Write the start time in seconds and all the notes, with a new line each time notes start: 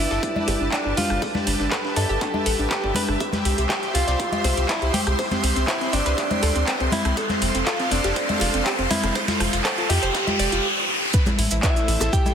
Already playing: G4 B4 D5 A5, riser
0.00 E4
0.11 G1 A4, snare
0.23 D4, kick, closed hi-hat
0.36 D4, cowbell, high conga
0.48 G1 G4, snare, closed hi-hat, open hi-hat, high bongo
0.61 G1 D4
0.72 D4 A4, kick, snare, clap, closed hi-hat
0.85 G1 D4
0.97 D4 F4, closed hi-hat, open hi-hat, high conga
1.10 G1 D4, cross-stick, closed hi-hat
1.22 A4 E5, kick, open hi-hat, high bongo
1.35 D4, snare, high conga
1.47 G1 D4, snare, closed hi-hat, open hi-hat
1.60 G1 D4, snare
1.71 A4 B4, kick, snare, clap, closed hi-hat
1.84 D4, snare
1.96 G2 D4 A4, snare, closed hi-hat, open hi-hat, cowbell
2.09 G1 G4
2.21 D4, kick, clap, closed hi-hat
2.34 D4, cowbell, high conga
2.46 A1 A4, snare, closed hi-hat, open hi-hat
2.59 A1 D4
2.71 G4 B4, kick, snare, clap, closed hi-hat
2.84 G1 D4, kick
2.95 D4 B4, closed hi-hat, open hi-hat, high bongo, high conga
3.08 G1 D4, cross-stick
3.20 C5 E5 C6, kick, closed hi-hat, high bongo
3.33 G4, snare, closed hi-hat, high conga
3.45 C2 G4, closed hi-hat, open hi-hat
3.58 C2 G4, closed hi-hat
3.70 G4 E5, kick, snare, clap, closed hi-hat
3.83 G4, snare, closed hi-hat
3.95 C2 F4 G4, closed hi-hat, open hi-hat
4.08 C2 D5, snare, closed hi-hat
4.20 G4, kick, closed hi-hat
4.32 G4, closed hi-hat, cowbell, high conga
4.44 C2 C5, snare, closed hi-hat, open hi-hat, high bongo
4.57 C2 G4, closed hi-hat
4.69 E4 D5, kick, snare, clap, closed hi-hat
4.82 C2 G4, closed hi-hat
4.94 G4, closed hi-hat, open hi-hat, high conga
5.07 C2 G4, cross-stick, closed hi-hat
5.19 C5, kick, closed hi-hat, open hi-hat, high bongo
5.31 C4, snare, closed hi-hat, high conga
5.44 C2 C4, snare, closed hi-hat, open hi-hat
5.56 C2 C4, snare, closed hi-hat
5.68 E4 C5, kick, snare, clap, closed hi-hat
5.81 C4, snare, closed hi-hat
5.93 G1 C4 D4, snare, closed hi-hat, open hi-hat, cowbell
6.06 C2 B4, closed hi-hat
6.18 C4, kick, clap, closed hi-hat
6.31 C4, closed hi-hat, cowbell, high conga
6.43 D2 A4, snare, closed hi-hat, open hi-hat
6.55 D2 C4, closed hi-hat
6.67 C4 B4, kick, snare, clap, closed hi-hat
6.80 C2 C4, kick, closed hi-hat
6.92 C4 E4, closed hi-hat, open hi-hat, high conga
7.05 C2 C4, cross-stick, closed hi-hat
7.17 A4 C5 F5, kick, closed hi-hat, high bongo
7.29 C4, snare, closed hi-hat, high conga
7.42 F1 C4, closed hi-hat, open hi-hat
7.54 F1 C4, closed hi-hat
7.66 F4 A4, kick, snare, clap, closed hi-hat
7.80 C4, snare, closed hi-hat
7.91 F1 C4 D4, closed hi-hat, open hi-hat
8.04 F1 G4, snare, closed hi-hat
8.16 C4, kick, closed hi-hat
8.29 C4, closed hi-hat, cowbell, high conga
8.40 F1 F4, snare, closed hi-hat, open hi-hat, high bongo
8.54 F1 C4, closed hi-hat
8.66 C4 G4, kick, snare, clap, closed hi-hat
8.79 F1 C4, closed hi-hat
8.91 C4 E4, snare, closed hi-hat, open hi-hat, high conga
9.03 F1 C4, cross-stick, snare, closed hi-hat
9.15 C5, kick, snare, closed hi-hat, high bongo
9.28 F4, snare, closed hi-hat, high conga
9.40 F1 F4, cross-stick, snare, open hi-hat
9.53 F1 F4, snare, closed hi-hat
9.65 A4 C5, kick, snare, clap, closed hi-hat
9.78 F4, snare, closed hi-hat
9.89 F2 F4 G4, snare, closed hi-hat, open hi-hat, cowbell
10.03 F1 C5, closed hi-hat
10.14 F4, kick, clap, closed hi-hat
10.27 F4, closed hi-hat, cowbell, high conga
10.39 F1 D5, snare, closed hi-hat, open hi-hat
10.52 F1 F4, closed hi-hat
11.13 A3 A4 B4 C5 E5, kick, closed hi-hat, maracas
11.26 E4, snare, closed hi-hat, high bongo, high conga, maracas
11.38 A1 E4, closed hi-hat, open hi-hat
11.51 A1 E4, closed hi-hat, maracas
11.63 E4 B4 E5, kick, snare, clap, closed hi-hat, high bongo, maracas
11.76 E4, snare, closed hi-hat, maracas
11.88 A1 E4, closed hi-hat, open hi-hat
12.00 A1 A4, snare, closed hi-hat, high bongo, maracas
12.13 E4 G4 G5, kick, closed hi-hat, maracas
12.25 E4, closed hi-hat, cowbell, high conga, maracas